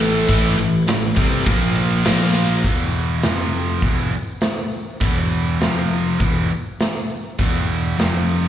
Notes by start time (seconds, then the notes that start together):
Already playing: A1 A2 E3 A3 E4 B4
0.00 ride
0.28 A1 A2 E3 A3, kick, ride
0.57 A1 A2 E3, ride
0.86 A1 A2 E3, snare, ride
1.16 C2 C3 G3 C4, kick, ride
1.46 A#1 A#2 F3 A#3 F4 C5, kick, ride
1.75 ride
2.04 A#1 A#2 F3 A#3, snare, ride
2.35 ride
2.64 E1 E2 B2 E3, kick, open hi-hat
2.93 open hi-hat
3.22 F1 F2 C3 F3, snare, open hi-hat
3.52 open hi-hat
3.81 E1 E2 B2 E3, kick, open hi-hat
4.12 open hi-hat
4.41 snare, open hi-hat
4.71 open hi-hat
5.01 E1 E2 B2 E3, kick, open hi-hat
5.31 open hi-hat
5.60 F1 F2 C3 F3, snare, open hi-hat
5.91 open hi-hat
6.20 E1 E2 B2 E3, kick, open hi-hat
6.50 open hi-hat
6.80 snare, open hi-hat
7.10 open hi-hat
7.39 E1 E2 B2 E3, kick, open hi-hat
7.70 open hi-hat
7.97 F1 F2 C3 F3, snare, open hi-hat
8.29 open hi-hat